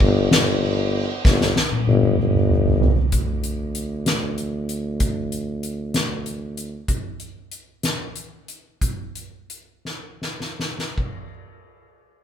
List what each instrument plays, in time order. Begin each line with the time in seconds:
0.00 tuba G1, kick, ride
0.31 tuba G1, snare, ride
0.63 ride
0.94 ride
1.25 tuba G1, kick, snare
1.41 snare
1.56 snare
1.72 high tom
1.87 tuba G1, high tom
2.03 mid tom
2.18 tuba G1, mid tom
2.34 mid tom
2.50 mid tom
2.66 floor tom
2.81 floor tom
2.97 floor tom
3.12 tuba D2, kick, closed hi-hat
3.44 closed hi-hat
3.75 closed hi-hat
4.06 snare, closed hi-hat
4.38 closed hi-hat
4.69 closed hi-hat
5.00 kick, closed hi-hat
5.32 closed hi-hat
5.63 closed hi-hat
5.94 snare, closed hi-hat
6.26 closed hi-hat
6.57 closed hi-hat
6.88 kick, closed hi-hat
7.20 closed hi-hat
7.52 closed hi-hat
7.83 snare, closed hi-hat
8.16 closed hi-hat
8.48 closed hi-hat
8.81 kick, closed hi-hat
9.15 closed hi-hat
9.50 closed hi-hat
9.85 snare
10.22 snare
10.40 snare
10.59 snare
10.78 snare
10.98 kick, crash